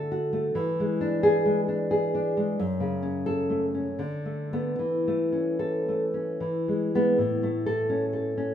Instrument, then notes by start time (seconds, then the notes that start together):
nylon-string guitar
Already playing: D3 A3 A4
0.12 F#4
0.33 A3
0.55 E3
0.80 G#3
1.01 D4
1.23 G#4
1.45 G#3
1.68 D4
1.91 G#4
2.15 D4
2.37 G#3
2.60 F#2
2.80 C#3
3.03 C#4
3.26 A4
3.50 A3
3.74 C#4
3.99 D3
4.25 A3
4.53 A3 B3
4.79 E3
5.08 A3
5.32 C#4
5.59 A4
5.89 A3
6.14 C#4
6.40 E3
6.68 G#3
6.95 G#3 B3
7.18 A2
7.43 A3
7.66 A4
7.89 C#4
8.13 A4
8.37 C#4